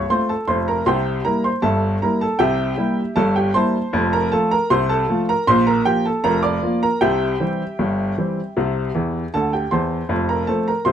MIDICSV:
0, 0, Header, 1, 2, 480
1, 0, Start_track
1, 0, Tempo, 768246
1, 542, Time_signature, 2, 2, 24, 8
1, 6823, End_track
2, 0, Start_track
2, 0, Title_t, "Upright piano"
2, 0, Program_c, 0, 0
2, 0, Note_on_c, 0, 85, 65
2, 62, Note_on_c, 0, 60, 41
2, 63, Note_off_c, 0, 85, 0
2, 63, Note_on_c, 0, 65, 40
2, 64, Note_on_c, 0, 57, 43
2, 64, Note_on_c, 0, 84, 77
2, 70, Note_on_c, 0, 72, 56
2, 178, Note_off_c, 0, 72, 0
2, 182, Note_on_c, 0, 81, 66
2, 183, Note_off_c, 0, 84, 0
2, 188, Note_on_c, 0, 69, 53
2, 194, Note_off_c, 0, 60, 0
2, 195, Note_off_c, 0, 65, 0
2, 196, Note_off_c, 0, 57, 0
2, 297, Note_off_c, 0, 69, 0
2, 297, Note_on_c, 0, 84, 70
2, 299, Note_on_c, 0, 29, 64
2, 301, Note_on_c, 0, 41, 62
2, 302, Note_off_c, 0, 81, 0
2, 303, Note_on_c, 0, 72, 55
2, 414, Note_off_c, 0, 72, 0
2, 419, Note_off_c, 0, 84, 0
2, 424, Note_on_c, 0, 82, 66
2, 429, Note_on_c, 0, 70, 56
2, 492, Note_off_c, 0, 29, 0
2, 493, Note_off_c, 0, 41, 0
2, 538, Note_off_c, 0, 70, 0
2, 538, Note_on_c, 0, 36, 71
2, 538, Note_on_c, 0, 84, 79
2, 540, Note_on_c, 0, 48, 75
2, 543, Note_off_c, 0, 82, 0
2, 544, Note_on_c, 0, 72, 62
2, 548, Note_on_c, 0, 79, 61
2, 732, Note_off_c, 0, 84, 0
2, 744, Note_off_c, 0, 36, 0
2, 745, Note_off_c, 0, 48, 0
2, 766, Note_off_c, 0, 72, 0
2, 768, Note_off_c, 0, 79, 0
2, 778, Note_on_c, 0, 82, 70
2, 779, Note_on_c, 0, 55, 38
2, 784, Note_on_c, 0, 58, 45
2, 784, Note_on_c, 0, 64, 43
2, 787, Note_on_c, 0, 70, 55
2, 896, Note_off_c, 0, 70, 0
2, 900, Note_off_c, 0, 82, 0
2, 901, Note_on_c, 0, 84, 68
2, 907, Note_on_c, 0, 72, 52
2, 912, Note_off_c, 0, 55, 0
2, 915, Note_off_c, 0, 58, 0
2, 916, Note_off_c, 0, 64, 0
2, 1013, Note_on_c, 0, 81, 84
2, 1015, Note_on_c, 0, 43, 63
2, 1016, Note_off_c, 0, 72, 0
2, 1017, Note_on_c, 0, 31, 62
2, 1020, Note_on_c, 0, 76, 57
2, 1021, Note_on_c, 0, 69, 60
2, 1022, Note_off_c, 0, 84, 0
2, 1209, Note_off_c, 0, 81, 0
2, 1222, Note_off_c, 0, 43, 0
2, 1223, Note_off_c, 0, 31, 0
2, 1244, Note_off_c, 0, 76, 0
2, 1245, Note_off_c, 0, 69, 0
2, 1263, Note_on_c, 0, 82, 66
2, 1269, Note_on_c, 0, 55, 41
2, 1269, Note_on_c, 0, 58, 41
2, 1270, Note_on_c, 0, 64, 46
2, 1272, Note_on_c, 0, 70, 50
2, 1379, Note_off_c, 0, 70, 0
2, 1382, Note_on_c, 0, 81, 73
2, 1383, Note_off_c, 0, 82, 0
2, 1390, Note_on_c, 0, 69, 56
2, 1399, Note_off_c, 0, 55, 0
2, 1399, Note_off_c, 0, 58, 0
2, 1400, Note_off_c, 0, 64, 0
2, 1492, Note_on_c, 0, 79, 89
2, 1497, Note_on_c, 0, 36, 71
2, 1498, Note_off_c, 0, 69, 0
2, 1498, Note_on_c, 0, 48, 76
2, 1502, Note_off_c, 0, 81, 0
2, 1502, Note_on_c, 0, 76, 66
2, 1504, Note_on_c, 0, 67, 65
2, 1703, Note_off_c, 0, 36, 0
2, 1703, Note_off_c, 0, 48, 0
2, 1734, Note_on_c, 0, 55, 44
2, 1737, Note_on_c, 0, 64, 49
2, 1738, Note_on_c, 0, 58, 46
2, 1868, Note_off_c, 0, 55, 0
2, 1870, Note_off_c, 0, 64, 0
2, 1871, Note_off_c, 0, 58, 0
2, 1880, Note_off_c, 0, 79, 0
2, 1956, Note_off_c, 0, 76, 0
2, 1957, Note_off_c, 0, 67, 0
2, 1972, Note_on_c, 0, 81, 96
2, 1977, Note_on_c, 0, 31, 66
2, 1977, Note_on_c, 0, 43, 68
2, 1982, Note_on_c, 0, 69, 67
2, 2093, Note_off_c, 0, 69, 0
2, 2097, Note_off_c, 0, 81, 0
2, 2098, Note_on_c, 0, 79, 67
2, 2110, Note_on_c, 0, 67, 53
2, 2183, Note_off_c, 0, 31, 0
2, 2183, Note_off_c, 0, 43, 0
2, 2214, Note_on_c, 0, 84, 85
2, 2218, Note_off_c, 0, 67, 0
2, 2218, Note_on_c, 0, 55, 47
2, 2219, Note_on_c, 0, 58, 46
2, 2220, Note_off_c, 0, 79, 0
2, 2221, Note_on_c, 0, 64, 50
2, 2222, Note_on_c, 0, 72, 64
2, 2224, Note_on_c, 0, 81, 67
2, 2351, Note_off_c, 0, 55, 0
2, 2352, Note_off_c, 0, 58, 0
2, 2353, Note_off_c, 0, 64, 0
2, 2456, Note_on_c, 0, 29, 78
2, 2458, Note_on_c, 0, 41, 87
2, 2556, Note_off_c, 0, 72, 0
2, 2557, Note_off_c, 0, 81, 0
2, 2559, Note_off_c, 0, 84, 0
2, 2580, Note_on_c, 0, 82, 78
2, 2589, Note_on_c, 0, 70, 56
2, 2662, Note_off_c, 0, 29, 0
2, 2663, Note_off_c, 0, 41, 0
2, 2697, Note_off_c, 0, 70, 0
2, 2697, Note_on_c, 0, 81, 85
2, 2699, Note_on_c, 0, 53, 45
2, 2700, Note_off_c, 0, 82, 0
2, 2701, Note_on_c, 0, 57, 49
2, 2705, Note_on_c, 0, 65, 51
2, 2706, Note_on_c, 0, 69, 64
2, 2815, Note_off_c, 0, 69, 0
2, 2819, Note_off_c, 0, 81, 0
2, 2820, Note_on_c, 0, 82, 83
2, 2828, Note_on_c, 0, 70, 66
2, 2831, Note_off_c, 0, 53, 0
2, 2833, Note_off_c, 0, 57, 0
2, 2836, Note_off_c, 0, 65, 0
2, 2936, Note_off_c, 0, 70, 0
2, 2938, Note_on_c, 0, 84, 94
2, 2939, Note_on_c, 0, 36, 70
2, 2940, Note_off_c, 0, 82, 0
2, 2941, Note_on_c, 0, 48, 73
2, 2946, Note_on_c, 0, 72, 74
2, 3054, Note_off_c, 0, 72, 0
2, 3057, Note_on_c, 0, 81, 90
2, 3058, Note_off_c, 0, 84, 0
2, 3063, Note_on_c, 0, 69, 68
2, 3142, Note_off_c, 0, 36, 0
2, 3143, Note_off_c, 0, 48, 0
2, 3179, Note_on_c, 0, 53, 46
2, 3185, Note_on_c, 0, 57, 50
2, 3186, Note_on_c, 0, 65, 53
2, 3249, Note_off_c, 0, 81, 0
2, 3283, Note_off_c, 0, 69, 0
2, 3305, Note_on_c, 0, 82, 85
2, 3311, Note_off_c, 0, 53, 0
2, 3312, Note_on_c, 0, 70, 65
2, 3314, Note_off_c, 0, 57, 0
2, 3315, Note_off_c, 0, 65, 0
2, 3417, Note_off_c, 0, 70, 0
2, 3420, Note_on_c, 0, 84, 109
2, 3421, Note_off_c, 0, 82, 0
2, 3422, Note_on_c, 0, 34, 83
2, 3427, Note_on_c, 0, 46, 90
2, 3432, Note_on_c, 0, 72, 77
2, 3536, Note_off_c, 0, 72, 0
2, 3538, Note_off_c, 0, 84, 0
2, 3541, Note_on_c, 0, 82, 75
2, 3546, Note_on_c, 0, 70, 61
2, 3624, Note_off_c, 0, 34, 0
2, 3626, Note_off_c, 0, 46, 0
2, 3653, Note_off_c, 0, 70, 0
2, 3658, Note_on_c, 0, 79, 82
2, 3659, Note_off_c, 0, 82, 0
2, 3659, Note_on_c, 0, 53, 44
2, 3663, Note_on_c, 0, 58, 52
2, 3664, Note_on_c, 0, 65, 46
2, 3666, Note_on_c, 0, 67, 59
2, 3773, Note_off_c, 0, 67, 0
2, 3777, Note_off_c, 0, 79, 0
2, 3783, Note_on_c, 0, 81, 67
2, 3790, Note_off_c, 0, 53, 0
2, 3791, Note_on_c, 0, 69, 49
2, 3793, Note_off_c, 0, 58, 0
2, 3794, Note_off_c, 0, 65, 0
2, 3896, Note_off_c, 0, 69, 0
2, 3897, Note_on_c, 0, 82, 90
2, 3900, Note_off_c, 0, 81, 0
2, 3900, Note_on_c, 0, 29, 75
2, 3900, Note_on_c, 0, 41, 72
2, 3903, Note_on_c, 0, 70, 67
2, 4012, Note_off_c, 0, 70, 0
2, 4015, Note_on_c, 0, 86, 87
2, 4017, Note_off_c, 0, 82, 0
2, 4022, Note_on_c, 0, 74, 65
2, 4103, Note_off_c, 0, 29, 0
2, 4103, Note_off_c, 0, 41, 0
2, 4140, Note_on_c, 0, 53, 40
2, 4143, Note_on_c, 0, 58, 49
2, 4145, Note_on_c, 0, 65, 47
2, 4243, Note_off_c, 0, 74, 0
2, 4244, Note_off_c, 0, 86, 0
2, 4265, Note_on_c, 0, 82, 78
2, 4270, Note_on_c, 0, 70, 57
2, 4271, Note_off_c, 0, 53, 0
2, 4273, Note_off_c, 0, 58, 0
2, 4275, Note_off_c, 0, 65, 0
2, 4376, Note_off_c, 0, 70, 0
2, 4379, Note_on_c, 0, 79, 87
2, 4382, Note_off_c, 0, 82, 0
2, 4383, Note_on_c, 0, 36, 72
2, 4383, Note_on_c, 0, 48, 79
2, 4385, Note_on_c, 0, 76, 64
2, 4387, Note_on_c, 0, 67, 66
2, 4586, Note_off_c, 0, 36, 0
2, 4586, Note_off_c, 0, 48, 0
2, 4624, Note_on_c, 0, 52, 41
2, 4625, Note_on_c, 0, 55, 40
2, 4627, Note_on_c, 0, 60, 46
2, 4755, Note_off_c, 0, 52, 0
2, 4756, Note_off_c, 0, 55, 0
2, 4757, Note_off_c, 0, 60, 0
2, 4867, Note_on_c, 0, 31, 67
2, 4867, Note_on_c, 0, 43, 59
2, 5069, Note_off_c, 0, 31, 0
2, 5069, Note_off_c, 0, 43, 0
2, 5109, Note_on_c, 0, 52, 42
2, 5113, Note_on_c, 0, 55, 38
2, 5113, Note_on_c, 0, 60, 46
2, 5239, Note_off_c, 0, 52, 0
2, 5242, Note_off_c, 0, 55, 0
2, 5243, Note_off_c, 0, 60, 0
2, 5352, Note_on_c, 0, 48, 69
2, 5354, Note_on_c, 0, 36, 67
2, 5553, Note_off_c, 0, 48, 0
2, 5554, Note_off_c, 0, 36, 0
2, 5590, Note_on_c, 0, 52, 59
2, 5593, Note_on_c, 0, 40, 55
2, 5768, Note_off_c, 0, 52, 0
2, 5770, Note_off_c, 0, 40, 0
2, 5799, Note_off_c, 0, 79, 0
2, 5802, Note_off_c, 0, 76, 0
2, 5803, Note_off_c, 0, 67, 0
2, 5834, Note_on_c, 0, 81, 77
2, 5836, Note_on_c, 0, 50, 60
2, 5838, Note_on_c, 0, 38, 54
2, 5844, Note_on_c, 0, 69, 52
2, 5947, Note_off_c, 0, 69, 0
2, 5949, Note_off_c, 0, 81, 0
2, 5955, Note_on_c, 0, 79, 51
2, 5964, Note_on_c, 0, 67, 42
2, 6012, Note_off_c, 0, 50, 0
2, 6014, Note_off_c, 0, 38, 0
2, 6067, Note_off_c, 0, 67, 0
2, 6068, Note_on_c, 0, 84, 66
2, 6071, Note_off_c, 0, 79, 0
2, 6071, Note_on_c, 0, 40, 56
2, 6073, Note_on_c, 0, 52, 59
2, 6075, Note_on_c, 0, 72, 52
2, 6077, Note_on_c, 0, 81, 51
2, 6250, Note_off_c, 0, 40, 0
2, 6251, Note_off_c, 0, 52, 0
2, 6304, Note_on_c, 0, 29, 64
2, 6306, Note_on_c, 0, 41, 73
2, 6407, Note_off_c, 0, 72, 0
2, 6408, Note_off_c, 0, 81, 0
2, 6410, Note_off_c, 0, 84, 0
2, 6428, Note_on_c, 0, 82, 62
2, 6438, Note_on_c, 0, 70, 48
2, 6509, Note_off_c, 0, 29, 0
2, 6510, Note_off_c, 0, 41, 0
2, 6543, Note_on_c, 0, 81, 73
2, 6544, Note_off_c, 0, 70, 0
2, 6546, Note_on_c, 0, 53, 37
2, 6547, Note_off_c, 0, 82, 0
2, 6549, Note_on_c, 0, 57, 43
2, 6553, Note_on_c, 0, 69, 51
2, 6555, Note_on_c, 0, 60, 45
2, 6661, Note_off_c, 0, 69, 0
2, 6664, Note_off_c, 0, 81, 0
2, 6671, Note_on_c, 0, 82, 63
2, 6678, Note_off_c, 0, 53, 0
2, 6678, Note_on_c, 0, 70, 48
2, 6680, Note_off_c, 0, 57, 0
2, 6684, Note_off_c, 0, 60, 0
2, 6779, Note_on_c, 0, 84, 77
2, 6783, Note_on_c, 0, 36, 59
2, 6784, Note_off_c, 0, 70, 0
2, 6785, Note_on_c, 0, 48, 61
2, 6788, Note_off_c, 0, 82, 0
2, 6790, Note_on_c, 0, 72, 57
2, 6823, Note_off_c, 0, 36, 0
2, 6823, Note_off_c, 0, 48, 0
2, 6823, Note_off_c, 0, 72, 0
2, 6823, Note_off_c, 0, 84, 0
2, 6823, End_track
0, 0, End_of_file